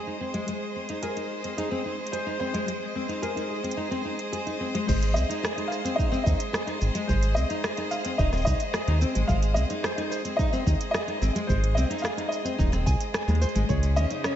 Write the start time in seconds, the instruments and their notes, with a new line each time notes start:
Already playing: string quartet G#3 G#4 C5 D#5
0.07 nylon-string guitar D#4
0.21 nylon-string guitar C4
0.34 nylon-string guitar G#3, closed hi-hat
0.48 nylon-string guitar G#3, closed hi-hat
0.76 nylon-string guitar C4
0.89 nylon-string guitar D#4, closed hi-hat
1.02 nylon-string guitar G#4, felt piano A#4, closed hi-hat
1.17 nylon-string guitar D#4, closed hi-hat
1.44 nylon-string guitar C4, closed hi-hat
1.57 nylon-string guitar D#4, felt piano G#4, closed hi-hat
1.71 nylon-string guitar C4
1.85 nylon-string guitar D#4
2.07 closed hi-hat
2.12 nylon-string guitar G#4, felt piano C5, closed hi-hat
2.26 nylon-string guitar D#4
2.40 nylon-string guitar C4, felt piano C5
2.54 nylon-string guitar G#3, closed hi-hat
2.68 nylon-string guitar G#3, closed hi-hat
2.95 nylon-string guitar C4
3.09 nylon-string guitar D#4, closed hi-hat
3.22 nylon-string guitar G#4, felt piano A#4, closed hi-hat
3.36 nylon-string guitar D#4, closed hi-hat
3.49 felt piano G#4
3.64 nylon-string guitar C4, closed hi-hat
3.71 closed hi-hat
3.77 nylon-string guitar D#4
3.91 nylon-string guitar C4, closed hi-hat
4.05 nylon-string guitar D#4
4.19 closed hi-hat
4.32 nylon-string guitar G#4, closed hi-hat
4.46 nylon-string guitar D#4, closed hi-hat
4.60 nylon-string guitar C4
4.74 nylon-string guitar G#3, closed hi-hat
4.87 analog synth bass G#1, nylon-string guitar G#3, felt piano C5, kick, crash, shaker
5.03 closed hi-hat, shaker
5.14 analog synth bass C2, nylon-string guitar C4, felt piano D#5, shaker
5.29 nylon-string guitar D#4, closed hi-hat, shaker
5.43 nylon-string guitar G#4, cross-stick, shaker
5.57 nylon-string guitar D#4, closed hi-hat
5.68 felt piano F5
5.72 cross-stick, shaker
5.85 nylon-string guitar C4, closed hi-hat, shaker
5.96 nylon-string guitar D#4, felt piano D#5, kick, shaker
6.12 nylon-string guitar C4, shaker
6.24 analog synth bass D#2, nylon-string guitar D#4, felt piano D#5, kick, shaker
6.40 closed hi-hat, shaker
6.53 nylon-string guitar G#4, cross-stick, shaker
6.67 nylon-string guitar D#4, closed hi-hat
6.81 analog synth bass G#1, nylon-string guitar C4, shaker
6.95 nylon-string guitar G#3, closed hi-hat, shaker
7.07 analog synth bass G#1, nylon-string guitar G#3, felt piano C5, kick, shaker
7.23 closed hi-hat, shaker
7.35 analog synth bass C2, nylon-string guitar C4, felt piano D#5, shaker
7.50 nylon-string guitar D#4, closed hi-hat, shaker
7.64 nylon-string guitar G#4, cross-stick, shaker
7.77 nylon-string guitar D#4, closed hi-hat
7.91 felt piano F5, shaker
8.05 nylon-string guitar C4, closed hi-hat, shaker
8.18 analog synth bass D#1, nylon-string guitar D#4, felt piano D#5, kick, shaker
8.33 nylon-string guitar C4, cross-stick, shaker
8.37 shaker
8.42 felt piano D#5, shaker
8.46 analog synth bass C2, nylon-string guitar D#4, kick, shaker
8.60 closed hi-hat, shaker
8.74 nylon-string guitar G#4, cross-stick, shaker
8.87 analog synth bass D#2, nylon-string guitar D#4, closed hi-hat
9.01 nylon-string guitar C4, shaker
9.15 analog synth bass G#1, nylon-string guitar G#3, closed hi-hat, shaker
9.28 analog synth bass G#1, nylon-string guitar G#3, felt piano F5, kick, shaker
9.43 closed hi-hat, shaker
9.54 analog synth bass C2, nylon-string guitar C4, felt piano D#5, shaker
9.70 nylon-string guitar D#4, closed hi-hat, shaker
9.82 nylon-string guitar G#4, felt piano C5, cross-stick, shaker
9.98 nylon-string guitar D#4, closed hi-hat
10.10 felt piano C5, cross-stick, shaker
10.25 nylon-string guitar C4, closed hi-hat, shaker
10.37 nylon-string guitar D#4, felt piano D#5, kick, shaker
10.53 nylon-string guitar C4, shaker
10.66 analog synth bass D#2, nylon-string guitar D#4, kick, shaker
10.81 closed hi-hat, shaker
10.91 nylon-string guitar G#4, felt piano D#5, cross-stick, shaker
11.08 nylon-string guitar D#4, closed hi-hat
11.22 analog synth bass G#1, nylon-string guitar C4, shaker
11.35 nylon-string guitar G#3, closed hi-hat, shaker
11.47 analog synth bass G#1, nylon-string guitar G#3, felt piano C5, kick, shaker
11.64 closed hi-hat
11.75 analog synth bass C2, nylon-string guitar C4, felt piano D#5, shaker
11.90 nylon-string guitar D#4, closed hi-hat
11.98 felt piano F5, shaker
12.03 nylon-string guitar G#4, cross-stick, shaker
12.17 nylon-string guitar D#4, closed hi-hat
12.29 felt piano D#5, shaker
12.45 nylon-string guitar C4, closed hi-hat, shaker
12.58 analog synth bass D#1, nylon-string guitar D#4, kick, shaker
12.72 nylon-string guitar C4, cross-stick, closed hi-hat, shaker
12.86 analog synth bass C2, nylon-string guitar G#5, kick, shaker
13.01 closed hi-hat, shaker
13.14 nylon-string guitar G#5, cross-stick, shaker
13.28 analog synth bass D#2, nylon-string guitar G#3, closed hi-hat, shaker
13.35 closed hi-hat
13.41 nylon-string guitar C5, closed hi-hat, shaker
13.49 closed hi-hat
13.55 analog synth bass G#1, nylon-string guitar G#3, closed hi-hat, shaker
13.69 analog synth bass C#2, string quartet C#3, nylon-string guitar G#3, felt piano C#5, kick, shaker
13.83 closed hi-hat, shaker
13.95 analog synth bass D#2, string quartet C#4, nylon-string guitar C#4, felt piano D#5, shaker
14.11 nylon-string guitar D#4, closed hi-hat, shaker
14.24 nylon-string guitar C#4, cross-stick, shaker